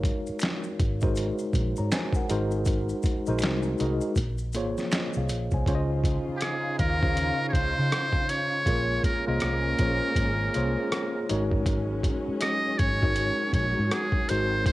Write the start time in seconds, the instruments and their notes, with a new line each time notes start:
Already playing: fingered electric bass G#1, tine electric piano G#3 D#4 F#4 G#4 A#4 C#5 F5
0.04 kick, closed hi-hat
0.27 muted fingered electric bass stroke, maracas
0.39 finger snap, closed hi-hat, maracas
0.43 finger snap, snare
0.64 maracas
0.80 fingered electric bass G#1, kick, closed hi-hat
1.01 tine electric piano G#3 D#4 F#4 A#4 C5, kick, maracas
1.16 closed hi-hat, maracas
1.39 maracas
1.53 fingered electric bass A#1, kick, closed hi-hat, maracas
1.76 fingered electric bass G#2, tine electric piano C#5 A#5, maracas
1.92 tine electric piano C5 G#5, finger snap, snare, closed hi-hat, maracas
2.12 tine electric piano F#5, kick, maracas
2.17 tine electric piano A#4
2.29 fingered electric bass G#1, tine electric piano G#3 D#4 F#4 A#4 C5, closed hi-hat, maracas
2.51 maracas
2.65 kick, closed hi-hat, maracas
2.89 maracas
3.02 kick, closed hi-hat, maracas
3.26 fingered electric bass A#1, tine electric piano G#3 D#4 F#4 A#4 C5, maracas
3.39 finger snap, closed hi-hat, maracas
3.43 fingered electric bass C2, finger snap, snare
3.63 maracas
3.78 fingered electric bass C2, tine electric piano G#3 D#4 F#4 A#4 D#5, closed hi-hat, maracas
4.01 maracas
4.15 fingered electric bass A#1, kick, closed hi-hat, maracas
4.38 maracas
4.53 fingered electric bass G#1, tine electric piano A#3 F4 G#4 C5 C#5, closed hi-hat, maracas
4.77 snare, maracas
4.92 finger snap, snare, closed hi-hat, maracas
5.13 fingered electric bass C2, tine electric piano F5, maracas
5.18 tine electric piano G#4
5.29 fingered electric bass A#1, closed hi-hat, maracas
5.51 fingered electric bass C2, tine electric piano C5 G#5, kick, maracas
5.66 fingered electric bass C#2, string section C#3 C#4 D#4 F4, tine electric piano C#3 C#4 F4 C5 C#5, kick, closed hi-hat
5.75 tine electric piano D#5
6.04 kick, closed hi-hat
6.29 muted fingered electric bass stroke
6.37 muted trumpet G4, closed hi-hat
6.41 muted trumpet G#4, cross-stick
6.79 fingered electric bass D#2, muted trumpet A#4, kick, closed hi-hat
7.02 tine electric piano C#3 C#4 F4 C5 F5, kick
7.17 closed hi-hat
7.49 muted trumpet C5 C#5
7.53 fingered electric bass C#2, kick, closed hi-hat
7.79 fingered electric bass C#3
7.92 cross-stick, closed hi-hat
8.12 kick
8.29 muted trumpet C#5, closed hi-hat
8.66 fingered electric bass A#1, string section G#3 A#3 C#4, tine electric piano A#3 F4 G#4 A#4 C#5, kick, closed hi-hat
9.03 muted trumpet A#4, kick, closed hi-hat
9.27 fingered electric bass C2, tine electric piano A#3 F4 G#4 C5 D#5, muted trumpet A#4
9.40 fingered electric bass C2, cross-stick, closed hi-hat
9.79 fingered electric bass A#1, tine electric piano A#3 F4 G#4 C5 C#5, kick, closed hi-hat
10.16 fingered electric bass G#1, kick, closed hi-hat
10.54 fingered electric bass C2, tine electric piano A#3 F4 G#4 C5 C#5, closed hi-hat
10.92 cross-stick, closed hi-hat
11.29 fingered electric bass G#1, string section F#3 C#4, tine electric piano G#3 D#4 F#4 A#4 C#5, closed hi-hat
11.51 kick
11.66 kick, closed hi-hat
12.03 kick, closed hi-hat
12.28 muted fingered electric bass stroke
12.41 muted trumpet D#5, cross-stick, closed hi-hat
12.78 fingered electric bass G#1, muted trumpet C#5, kick, closed hi-hat
13.02 tine electric piano G#3 D#4 F#4 A#4 C#5, kick
13.16 closed hi-hat
13.53 fingered electric bass A#1, muted trumpet C#5, kick, closed hi-hat
13.79 fingered electric bass G#2
13.91 muted trumpet G#4, cross-stick, closed hi-hat
14.12 kick
14.28 fingered electric bass G#1, string section G#3 C4, tine electric piano G#3 D#4 F#4 A#4 C5, muted trumpet C5, closed hi-hat
14.66 muted trumpet C5, kick, closed hi-hat